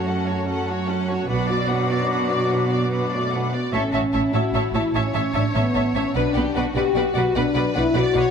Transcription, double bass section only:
0, 0, Header, 1, 2, 480
1, 0, Start_track
1, 0, Tempo, 403769
1, 93, Time_signature, 6, 3, 24, 8
1, 9874, End_track
2, 0, Start_track
2, 0, Title_t, "Double bass section"
2, 0, Program_c, 0, 48
2, 1526, Note_on_c, 0, 35, 46
2, 1971, Note_off_c, 0, 35, 0
2, 4442, Note_on_c, 0, 33, 48
2, 4537, Note_off_c, 0, 33, 0
2, 4673, Note_on_c, 0, 33, 42
2, 4768, Note_off_c, 0, 33, 0
2, 4929, Note_on_c, 0, 33, 50
2, 5024, Note_off_c, 0, 33, 0
2, 5150, Note_on_c, 0, 33, 43
2, 5245, Note_off_c, 0, 33, 0
2, 5390, Note_on_c, 0, 33, 48
2, 5485, Note_off_c, 0, 33, 0
2, 5622, Note_on_c, 0, 33, 47
2, 5717, Note_off_c, 0, 33, 0
2, 5867, Note_on_c, 0, 33, 46
2, 5962, Note_off_c, 0, 33, 0
2, 6111, Note_on_c, 0, 33, 42
2, 6206, Note_off_c, 0, 33, 0
2, 6355, Note_on_c, 0, 33, 52
2, 6450, Note_off_c, 0, 33, 0
2, 6599, Note_on_c, 0, 33, 43
2, 6694, Note_off_c, 0, 33, 0
2, 6831, Note_on_c, 0, 33, 50
2, 6926, Note_off_c, 0, 33, 0
2, 7070, Note_on_c, 0, 33, 46
2, 7165, Note_off_c, 0, 33, 0
2, 7308, Note_on_c, 0, 35, 51
2, 7403, Note_off_c, 0, 35, 0
2, 7554, Note_on_c, 0, 35, 44
2, 7649, Note_off_c, 0, 35, 0
2, 7775, Note_on_c, 0, 35, 50
2, 7870, Note_off_c, 0, 35, 0
2, 8021, Note_on_c, 0, 35, 47
2, 8116, Note_off_c, 0, 35, 0
2, 8252, Note_on_c, 0, 35, 52
2, 8347, Note_off_c, 0, 35, 0
2, 8493, Note_on_c, 0, 35, 57
2, 8588, Note_off_c, 0, 35, 0
2, 8748, Note_on_c, 0, 35, 61
2, 8843, Note_off_c, 0, 35, 0
2, 8985, Note_on_c, 0, 35, 51
2, 9080, Note_off_c, 0, 35, 0
2, 9216, Note_on_c, 0, 35, 61
2, 9311, Note_off_c, 0, 35, 0
2, 9449, Note_on_c, 0, 35, 52
2, 9544, Note_off_c, 0, 35, 0
2, 9691, Note_on_c, 0, 35, 60
2, 9787, Note_off_c, 0, 35, 0
2, 9874, End_track
0, 0, End_of_file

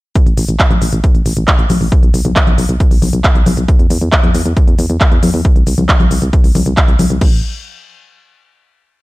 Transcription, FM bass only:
0, 0, Header, 1, 2, 480
1, 0, Start_track
1, 0, Tempo, 441176
1, 169, Time_signature, 4, 2, 24, 8
1, 9814, End_track
2, 0, Start_track
2, 0, Title_t, "FM bass"
2, 0, Program_c, 0, 39
2, 288, Note_on_c, 0, 33, 81
2, 368, Note_off_c, 0, 33, 0
2, 408, Note_on_c, 0, 33, 102
2, 488, Note_off_c, 0, 33, 0
2, 528, Note_on_c, 0, 33, 88
2, 608, Note_off_c, 0, 33, 0
2, 768, Note_on_c, 0, 33, 88
2, 847, Note_off_c, 0, 33, 0
2, 888, Note_on_c, 0, 33, 92
2, 968, Note_off_c, 0, 33, 0
2, 1008, Note_on_c, 0, 33, 90
2, 1088, Note_off_c, 0, 33, 0
2, 1248, Note_on_c, 0, 33, 84
2, 1327, Note_off_c, 0, 33, 0
2, 1368, Note_on_c, 0, 33, 99
2, 1447, Note_off_c, 0, 33, 0
2, 1488, Note_on_c, 0, 33, 91
2, 1567, Note_off_c, 0, 33, 0
2, 1728, Note_on_c, 0, 33, 91
2, 1807, Note_off_c, 0, 33, 0
2, 1848, Note_on_c, 0, 33, 95
2, 1927, Note_off_c, 0, 33, 0
2, 1968, Note_on_c, 0, 33, 88
2, 2047, Note_off_c, 0, 33, 0
2, 2208, Note_on_c, 0, 35, 87
2, 2287, Note_off_c, 0, 35, 0
2, 2328, Note_on_c, 0, 35, 104
2, 2407, Note_off_c, 0, 35, 0
2, 2447, Note_on_c, 0, 35, 96
2, 2527, Note_off_c, 0, 35, 0
2, 2688, Note_on_c, 0, 35, 87
2, 2767, Note_off_c, 0, 35, 0
2, 2808, Note_on_c, 0, 35, 97
2, 2887, Note_off_c, 0, 35, 0
2, 2928, Note_on_c, 0, 35, 93
2, 3007, Note_off_c, 0, 35, 0
2, 3168, Note_on_c, 0, 35, 88
2, 3247, Note_off_c, 0, 35, 0
2, 3288, Note_on_c, 0, 35, 100
2, 3367, Note_off_c, 0, 35, 0
2, 3408, Note_on_c, 0, 35, 92
2, 3487, Note_off_c, 0, 35, 0
2, 3648, Note_on_c, 0, 35, 89
2, 3727, Note_off_c, 0, 35, 0
2, 3768, Note_on_c, 0, 35, 103
2, 3847, Note_off_c, 0, 35, 0
2, 3888, Note_on_c, 0, 35, 91
2, 3967, Note_off_c, 0, 35, 0
2, 4128, Note_on_c, 0, 40, 85
2, 4207, Note_off_c, 0, 40, 0
2, 4248, Note_on_c, 0, 40, 101
2, 4327, Note_off_c, 0, 40, 0
2, 4368, Note_on_c, 0, 40, 92
2, 4447, Note_off_c, 0, 40, 0
2, 4608, Note_on_c, 0, 40, 88
2, 4687, Note_off_c, 0, 40, 0
2, 4728, Note_on_c, 0, 40, 95
2, 4807, Note_off_c, 0, 40, 0
2, 4848, Note_on_c, 0, 40, 91
2, 4927, Note_off_c, 0, 40, 0
2, 5088, Note_on_c, 0, 40, 90
2, 5167, Note_off_c, 0, 40, 0
2, 5208, Note_on_c, 0, 40, 101
2, 5288, Note_off_c, 0, 40, 0
2, 5328, Note_on_c, 0, 40, 94
2, 5407, Note_off_c, 0, 40, 0
2, 5568, Note_on_c, 0, 40, 92
2, 5647, Note_off_c, 0, 40, 0
2, 5688, Note_on_c, 0, 40, 98
2, 5767, Note_off_c, 0, 40, 0
2, 5809, Note_on_c, 0, 40, 94
2, 5888, Note_off_c, 0, 40, 0
2, 6048, Note_on_c, 0, 36, 86
2, 6128, Note_off_c, 0, 36, 0
2, 6168, Note_on_c, 0, 36, 99
2, 6247, Note_off_c, 0, 36, 0
2, 6288, Note_on_c, 0, 36, 91
2, 6367, Note_off_c, 0, 36, 0
2, 6528, Note_on_c, 0, 36, 82
2, 6607, Note_off_c, 0, 36, 0
2, 6648, Note_on_c, 0, 36, 95
2, 6727, Note_off_c, 0, 36, 0
2, 6768, Note_on_c, 0, 36, 91
2, 6847, Note_off_c, 0, 36, 0
2, 7009, Note_on_c, 0, 36, 85
2, 7088, Note_off_c, 0, 36, 0
2, 7128, Note_on_c, 0, 36, 103
2, 7207, Note_off_c, 0, 36, 0
2, 7248, Note_on_c, 0, 36, 97
2, 7327, Note_off_c, 0, 36, 0
2, 7488, Note_on_c, 0, 36, 89
2, 7568, Note_off_c, 0, 36, 0
2, 7608, Note_on_c, 0, 36, 98
2, 7687, Note_off_c, 0, 36, 0
2, 7729, Note_on_c, 0, 36, 89
2, 7808, Note_off_c, 0, 36, 0
2, 7849, Note_on_c, 0, 33, 100
2, 8072, Note_off_c, 0, 33, 0
2, 9814, End_track
0, 0, End_of_file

